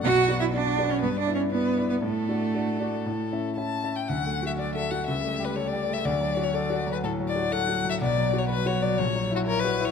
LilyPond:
<<
  \new Staff \with { instrumentName = "Violin" } { \time 4/4 \key d \major \tempo 4 = 122 fis''8. e''16 d''8. cis''16 \tuplet 3/2 { b'8 d''8 cis''8 } b'8. b'16 | a'2. a''8. g''16 | fis''8. e''16 \tuplet 3/2 { d''8 e''8 fis''8 } e''8. b'16 cis''16 d''8 e''16 | d''8. cis''16 d''8. b'16 a'8 d''8 fis''8. e''16 |
d''8. cis''16 \tuplet 3/2 { b'8 cis''8 d''8 } cis''8. fis'16 ais'16 b'8 cis''16 | }
  \new Staff \with { instrumentName = "Grand piano" } { \time 4/4 \key d \major b,,8 <b fis' d''>8 <b fis' d''>8 <b fis' d''>8 g,8 <b e' d''>8 <b e' d''>8 <b e' d''>8 | a,8 <d' fis' d''>8 <d' fis' d''>8 <d' fis' d''>8 a,8 <cis' e' e''>8 <cis' e' e''>8 <cis' e' e''>8 | \tuplet 3/2 { d,8 a8 fis'8 d''8 a'8 fis'8 cis,8 a8 g'8 a'8 g'8 a8 } | \tuplet 3/2 { d,8 fis8 fis'8 a'8 fis'8 fis8 a,8 fis8 fis'8 a'8 fis'8 fis8 } |
\tuplet 3/2 { b,,8 fis8 fis'8 b'8 fis'8 fis8 ais,,8 fis8 e'8 cis''8 fis'8 e'8 } | }
  \new Staff \with { instrumentName = "Cello" } { \time 4/4 \key d \major fis'8. e'16 d'8. cis'16 \tuplet 3/2 { b8 d'8 cis'8 } b8. b16 | a2. r4 | fis2 g2 | fis1~ |
fis1 | }
>>